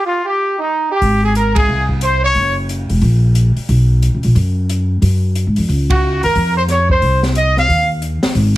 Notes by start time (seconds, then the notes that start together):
0.05 F4
0.25 G4
0.59 D#4
0.91 G4
1.01 G#1, kick, open hi-hat
1.24 G#4
1.35 A#4, closed hi-hat
1.55 G#4, kick, ride
1.68 C2
1.89 kick
2.01 C5, closed hi-hat
2.05 C5
2.24 C#5
2.34 F#1, kick, open hi-hat
2.69 closed hi-hat
2.90 E1, open hi-hat
3.02 A#1, kick, open hi-hat
3.35 closed hi-hat
3.57 muted upright bass stroke, open hi-hat
3.69 B1, kick, open hi-hat
4.03 closed hi-hat
4.14 C#2
4.23 A#1, open hi-hat
4.35 F#2, kick, open hi-hat
4.69 closed hi-hat
5.02 F#2, kick, open hi-hat
5.35 closed hi-hat
5.47 G#2
5.56 F2, open hi-hat
5.69 C#2, kick, open hi-hat
5.90 F#4, kick, ride
6.23 D#2 A#4, open hi-hat
6.35 F2, kick, open hi-hat
6.57 C5
6.68 C#5, snare, closed hi-hat
6.89 C5, kick
7.02 C2, kick, open hi-hat
7.23 snare
7.35 D#5, closed hi-hat
7.57 F5, snare
7.69 D#2, kick, open hi-hat
8.02 closed hi-hat
8.23 muted upright bass stroke, snare, open hi-hat
8.35 G#1, kick, open hi-hat